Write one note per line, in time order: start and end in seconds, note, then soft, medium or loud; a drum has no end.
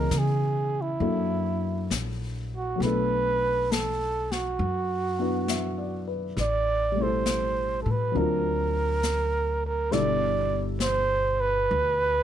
0.00 1.00 E3 soft
0.00 1.00 B3 soft
0.00 1.01 C#4 soft
0.00 1.01 G#4 soft
0.00 0.20 A#4 medium
0.00 1.00 D#5 soft
0.11 0.97 C#3 medium
0.11 snare soft
0.11 hi-hat pedal soft
0.18 0.83 G#4 medium
0.81 1.95 E4 medium
1.00 1.87 F#2 medium
1.00 2.74 F#3 soft
1.00 2.81 A#3 soft
1.00 2.81 D4 soft
1.00 2.82 E4 soft
1.00 2.82 A4 soft
1.00 brush sweep soft
1.90 2.77 A#1 medium
1.90 snare soft
1.90 hi-hat pedal soft
2.57 2.84 F#4 medium
2.76 6.34 F#3 soft
2.76 6.36 A3 soft
2.80 4.56 B1 medium
2.80 5.18 B3 soft
2.80 5.18 D4 soft
2.80 3.73 B4 medium
2.80 brush sweep soft
2.80 snare soft
2.86 6.40 A4 medium
3.72 4.34 A4 medium
3.72 snare soft
3.72 hi-hat pedal soft
4.32 6.09 F#4 medium
4.32 snare soft
4.59 6.32 F#2 medium
4.59 brush sweep soft
5.19 6.36 B3 soft
5.19 6.36 D4 soft
5.19 6.37 E4 soft
5.19 6.06 B4 soft
5.19 5.65 F#5 soft
5.48 6.06 E5 soft
5.48 snare soft
5.48 hi-hat pedal medium
5.78 6.24 D5 soft
6.08 6.54 B4 soft
6.37 7.82 A1 medium
6.37 brush sweep soft
6.37 snare soft
6.41 7.04 D5 medium
6.92 8.12 G3 soft
6.92 8.13 A3 soft
6.97 8.12 C4 soft
6.97 8.15 E4 soft
7.02 8.17 A4 soft
7.02 7.79 C5 medium
7.26 snare soft
7.26 hi-hat pedal medium
7.83 8.12 A2 medium
7.83 7.93 A4 medium
7.91 8.19 B4 medium
8.12 9.88 D2 medium
8.12 9.90 F#3 soft
8.12 9.91 C4 soft
8.12 9.91 D4 soft
8.12 brush sweep soft
8.16 9.93 F4 soft
8.16 9.93 A#4 medium
8.16 9.65 A#4 medium
9.03 snare soft
9.03 hi-hat pedal medium
9.66 9.94 A#4 medium
9.91 11.66 G1 medium
9.91 12.23 B2 soft
9.91 12.23 G3 medium
9.91 12.23 D4 soft
9.91 12.23 E4 soft
9.91 12.23 A4 medium
9.91 10.64 D5 loud
9.91 brush sweep soft
9.91 snare soft
10.80 11.42 C5 medium
10.80 snare soft
10.80 hi-hat pedal soft
11.41 12.23 B4 loud
11.69 12.23 D2 medium
11.69 brush sweep soft